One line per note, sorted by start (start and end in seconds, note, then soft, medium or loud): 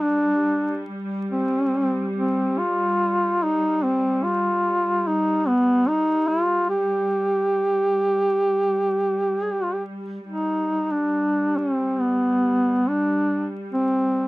0.00 10.27 G3 soft
0.00 0.87 D4 medium
1.31 2.11 C4 medium
2.16 2.60 C4 medium
2.58 3.45 F4 medium
3.43 3.85 D#4 medium
3.83 4.25 C4 medium
4.24 5.09 F4 medium
5.07 5.49 D#4 medium
5.48 5.89 B3 medium
5.87 6.29 D#4 loud
6.28 6.69 F4 medium
6.70 9.45 G4 loud
9.43 9.54 G#4 medium
9.53 9.65 G4 medium
9.63 9.75 F4 medium
9.74 9.83 G4 medium
10.27 14.28 G3 soft
10.27 10.93 D#4 medium
10.92 11.59 D4 medium
11.58 12.02 C4 medium
12.00 12.90 B3 medium
12.89 13.52 D4 medium
13.73 14.28 C4 medium